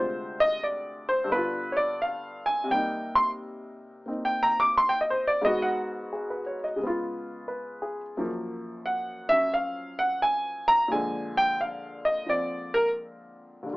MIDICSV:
0, 0, Header, 1, 2, 480
1, 0, Start_track
1, 0, Tempo, 691244
1, 1874, Time_signature, 4, 2, 24, 8
1, 2832, Tempo, 681818
1, 7632, Tempo, 694444
1, 9617, End_track
2, 0, Start_track
2, 0, Title_t, "Upright piano"
2, 0, Program_c, 0, 0
2, 0, Note_on_c, 0, 38, 54
2, 0, Note_on_c, 0, 48, 48
2, 0, Note_on_c, 0, 56, 46
2, 0, Note_on_c, 0, 65, 53
2, 0, Note_on_c, 0, 72, 71
2, 268, Note_off_c, 0, 72, 0
2, 280, Note_on_c, 0, 75, 104
2, 431, Note_off_c, 0, 75, 0
2, 441, Note_on_c, 0, 74, 74
2, 746, Note_off_c, 0, 74, 0
2, 755, Note_on_c, 0, 72, 88
2, 863, Note_on_c, 0, 43, 60
2, 889, Note_on_c, 0, 50, 48
2, 897, Note_off_c, 0, 38, 0
2, 904, Note_off_c, 0, 48, 0
2, 908, Note_off_c, 0, 72, 0
2, 911, Note_off_c, 0, 56, 0
2, 914, Note_on_c, 0, 59, 51
2, 916, Note_off_c, 0, 65, 0
2, 916, Note_on_c, 0, 71, 83
2, 942, Note_on_c, 0, 65, 57
2, 1196, Note_on_c, 0, 73, 67
2, 1218, Note_off_c, 0, 73, 0
2, 1224, Note_off_c, 0, 71, 0
2, 1227, Note_on_c, 0, 74, 87
2, 1386, Note_off_c, 0, 74, 0
2, 1401, Note_on_c, 0, 77, 82
2, 1707, Note_on_c, 0, 80, 88
2, 1708, Note_off_c, 0, 77, 0
2, 1832, Note_on_c, 0, 48, 60
2, 1851, Note_off_c, 0, 43, 0
2, 1860, Note_on_c, 0, 55, 52
2, 1863, Note_off_c, 0, 50, 0
2, 1866, Note_off_c, 0, 80, 0
2, 1876, Note_off_c, 0, 59, 0
2, 1883, Note_on_c, 0, 79, 82
2, 1888, Note_on_c, 0, 58, 56
2, 1890, Note_off_c, 0, 65, 0
2, 1909, Note_on_c, 0, 63, 57
2, 2188, Note_off_c, 0, 79, 0
2, 2190, Note_on_c, 0, 84, 99
2, 2288, Note_off_c, 0, 84, 0
2, 2808, Note_off_c, 0, 58, 0
2, 2819, Note_on_c, 0, 58, 42
2, 2828, Note_off_c, 0, 63, 0
2, 2832, Note_on_c, 0, 60, 42
2, 2838, Note_on_c, 0, 63, 46
2, 2953, Note_on_c, 0, 79, 80
2, 3077, Note_on_c, 0, 82, 99
2, 3128, Note_off_c, 0, 79, 0
2, 3192, Note_off_c, 0, 82, 0
2, 3198, Note_on_c, 0, 86, 106
2, 3294, Note_off_c, 0, 86, 0
2, 3323, Note_on_c, 0, 84, 97
2, 3404, Note_on_c, 0, 79, 85
2, 3422, Note_off_c, 0, 84, 0
2, 3464, Note_off_c, 0, 79, 0
2, 3487, Note_on_c, 0, 75, 73
2, 3554, Note_on_c, 0, 72, 76
2, 3636, Note_off_c, 0, 75, 0
2, 3671, Note_off_c, 0, 72, 0
2, 3674, Note_on_c, 0, 74, 88
2, 3771, Note_off_c, 0, 74, 0
2, 3773, Note_off_c, 0, 48, 0
2, 3773, Note_on_c, 0, 44, 64
2, 3785, Note_on_c, 0, 56, 55
2, 3787, Note_off_c, 0, 55, 0
2, 3787, Note_off_c, 0, 58, 0
2, 3794, Note_off_c, 0, 60, 0
2, 3796, Note_on_c, 0, 75, 93
2, 3797, Note_off_c, 0, 63, 0
2, 3799, Note_on_c, 0, 59, 55
2, 3810, Note_on_c, 0, 66, 76
2, 3920, Note_on_c, 0, 78, 87
2, 3949, Note_off_c, 0, 75, 0
2, 4025, Note_off_c, 0, 78, 0
2, 4274, Note_on_c, 0, 68, 50
2, 4397, Note_on_c, 0, 71, 43
2, 4495, Note_off_c, 0, 68, 0
2, 4511, Note_on_c, 0, 73, 51
2, 4598, Note_off_c, 0, 71, 0
2, 4635, Note_on_c, 0, 75, 55
2, 4660, Note_off_c, 0, 73, 0
2, 4721, Note_on_c, 0, 49, 58
2, 4729, Note_off_c, 0, 56, 0
2, 4740, Note_off_c, 0, 44, 0
2, 4740, Note_on_c, 0, 56, 51
2, 4753, Note_off_c, 0, 59, 0
2, 4759, Note_off_c, 0, 66, 0
2, 4772, Note_on_c, 0, 59, 56
2, 4795, Note_on_c, 0, 65, 65
2, 4800, Note_off_c, 0, 75, 0
2, 5226, Note_on_c, 0, 71, 51
2, 5466, Note_on_c, 0, 68, 52
2, 5597, Note_off_c, 0, 71, 0
2, 5692, Note_off_c, 0, 49, 0
2, 5701, Note_off_c, 0, 56, 0
2, 5714, Note_on_c, 0, 42, 52
2, 5716, Note_on_c, 0, 54, 49
2, 5717, Note_off_c, 0, 59, 0
2, 5719, Note_on_c, 0, 58, 49
2, 5722, Note_on_c, 0, 53, 60
2, 5729, Note_off_c, 0, 65, 0
2, 5800, Note_off_c, 0, 68, 0
2, 6195, Note_on_c, 0, 78, 82
2, 6491, Note_off_c, 0, 54, 0
2, 6501, Note_off_c, 0, 78, 0
2, 6501, Note_on_c, 0, 54, 45
2, 6501, Note_on_c, 0, 76, 99
2, 6517, Note_on_c, 0, 61, 47
2, 6659, Note_off_c, 0, 76, 0
2, 6675, Note_on_c, 0, 77, 89
2, 6982, Note_off_c, 0, 77, 0
2, 6992, Note_on_c, 0, 78, 96
2, 7147, Note_off_c, 0, 78, 0
2, 7158, Note_on_c, 0, 80, 97
2, 7466, Note_off_c, 0, 80, 0
2, 7479, Note_on_c, 0, 82, 115
2, 7620, Note_on_c, 0, 46, 59
2, 7624, Note_off_c, 0, 53, 0
2, 7630, Note_off_c, 0, 54, 0
2, 7632, Note_off_c, 0, 82, 0
2, 7634, Note_on_c, 0, 53, 56
2, 7636, Note_off_c, 0, 42, 0
2, 7638, Note_off_c, 0, 61, 0
2, 7639, Note_off_c, 0, 58, 0
2, 7646, Note_on_c, 0, 56, 53
2, 7646, Note_on_c, 0, 80, 84
2, 7659, Note_on_c, 0, 50, 64
2, 7946, Note_off_c, 0, 80, 0
2, 7962, Note_on_c, 0, 79, 102
2, 8110, Note_off_c, 0, 79, 0
2, 8123, Note_on_c, 0, 77, 78
2, 8424, Note_off_c, 0, 77, 0
2, 8430, Note_on_c, 0, 75, 89
2, 8566, Note_off_c, 0, 53, 0
2, 8577, Note_on_c, 0, 53, 44
2, 8583, Note_off_c, 0, 75, 0
2, 8594, Note_on_c, 0, 60, 49
2, 8599, Note_on_c, 0, 74, 89
2, 8903, Note_off_c, 0, 74, 0
2, 8907, Note_on_c, 0, 70, 104
2, 9004, Note_off_c, 0, 70, 0
2, 9521, Note_on_c, 0, 39, 50
2, 9533, Note_off_c, 0, 50, 0
2, 9543, Note_on_c, 0, 50, 45
2, 9546, Note_off_c, 0, 46, 0
2, 9548, Note_off_c, 0, 53, 0
2, 9556, Note_off_c, 0, 60, 0
2, 9559, Note_off_c, 0, 56, 0
2, 9573, Note_on_c, 0, 55, 44
2, 9594, Note_on_c, 0, 65, 52
2, 9617, Note_off_c, 0, 39, 0
2, 9617, Note_off_c, 0, 50, 0
2, 9617, Note_off_c, 0, 55, 0
2, 9617, Note_off_c, 0, 65, 0
2, 9617, End_track
0, 0, End_of_file